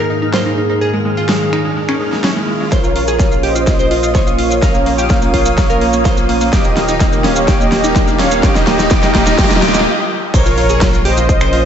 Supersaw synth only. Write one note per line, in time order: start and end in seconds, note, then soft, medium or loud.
2.72 3.34 A#4 medium
2.72 3.34 C#5 loud
3.43 4.29 C5 medium
3.43 4.29 D#5 medium
4.38 6.43 C#5 medium
4.38 6.43 F5 loud
6.53 7.15 G4 medium
6.53 7.15 D#5 medium
7.24 7.46 C#5 medium
7.24 7.46 F5 medium
7.48 8.10 G4 medium
7.48 8.10 D#5 loud
8.19 8.41 C#5 medium
8.19 8.41 F5 medium
8.43 8.89 G4 medium
8.43 8.89 D#5 loud
8.91 9.37 G4 medium
8.91 9.37 D#5 loud
9.38 9.60 G4 medium
9.38 9.60 D#5 loud
9.62 9.84 G4 medium
9.62 9.84 D#5 loud
10.34 10.96 A#4 medium
10.34 10.96 C#5 loud
11.05 11.65 C5 medium
11.05 11.65 D#5 loud